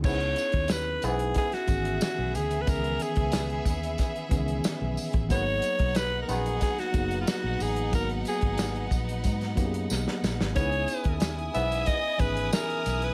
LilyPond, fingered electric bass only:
\new Staff \with { instrumentName = "Fingered electric bass" } { \clef bass \time 4/4 \key cis \dorian \tempo 4 = 91 cis,8 r16 dis,8. b,,8 r8 gis,,8 r16 b,,16 d,8 | cis,8 r16 cis,8. dis,8 r8 cis,8 r16 b,,16 r16 a,,16 | gis,,8 r16 b,,8. ais,,8 r8 fis,,8 r16 ais,,16 a,,8 | gis,,8 r16 gis,,8. ais,,8 gis,8 fis,8 b,,16 r16 ais,,16 gis,,16 |
cis,8 r16 dis,8. b,,8 r8 gis,,8 r8 b,,8 | }